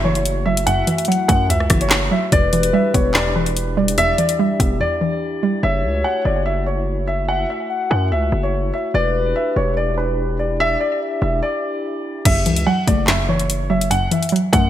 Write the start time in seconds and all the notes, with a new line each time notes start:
Already playing: F#1 F#2 F#3 A3 E4 F#4 C#5
0.04 E3 C#5
0.15 closed hi-hat
0.26 closed hi-hat
0.46 F#3 E5
0.57 closed hi-hat
0.67 F#2 E5 F#5, closed hi-hat
0.87 E3 E5, closed hi-hat
0.98 closed hi-hat
1.05 F#3 F#5, closed hi-hat
1.12 closed hi-hat
1.28 F#2 A3 F#5, kick, closed hi-hat
1.49 C#2 F#2 E5, closed hi-hat
1.60 cross-stick
1.70 F#1 E3, kick, cross-stick, closed hi-hat
1.81 C#5, closed hi-hat
1.90 snare, clap
2.11 F#3 E5
2.32 E1 E2 D4 E4 G4 B4 D5, kick, closed hi-hat
2.53 E3, closed hi-hat
2.63 closed hi-hat
2.73 G3 E5
2.94 E1 B3 C#5, kick, closed hi-hat
3.14 E2 D5, snare, clap
3.36 E3 B4
3.46 closed hi-hat
3.57 closed hi-hat
3.77 G3 D5
3.88 closed hi-hat
3.98 E2 D5 E5, closed hi-hat
4.18 E3 D5, closed hi-hat
4.29 closed hi-hat
4.39 G3 E5
4.60 E1 B3 E5, kick, closed hi-hat
4.80 E2 D5
5.01 E3
5.43 G3
5.63 F#1 A3 E4 F#4 C#5 E5
5.84 C#2
6.04 F#5
6.25 F#1 D5
6.46 E5
6.66 C#5
7.08 E5
7.29 E5 F#5
7.50 E5
7.70 F#5
7.91 F#2 F#5
8.12 C#2 E5
8.32 F#1
8.43 C#5
8.74 E5
8.94 E1 D4 G4 B4 D5
9.36 E5
9.56 E1 C#5
9.77 D5
9.98 B4
10.39 D5
10.60 D5 E5
10.80 D5
11.02 E5
11.22 E1 E5
11.43 D5
12.25 F#1 F#2 E5, kick, closed hi-hat, crash
12.46 C#2 E3, closed hi-hat
12.56 closed hi-hat
12.67 F#3 F#5
12.87 F#1 A3 D5, kick, closed hi-hat
13.07 F#2 E5, snare, clap
13.29 E3 C#5
13.40 closed hi-hat
13.50 closed hi-hat
13.70 F#3 E5
13.81 closed hi-hat
13.91 F#2 F#5, closed hi-hat
14.11 E3 E5, closed hi-hat
14.23 closed hi-hat
14.29 F#3, closed hi-hat
14.36 closed hi-hat
14.53 F#2 A3 F#5, kick, closed hi-hat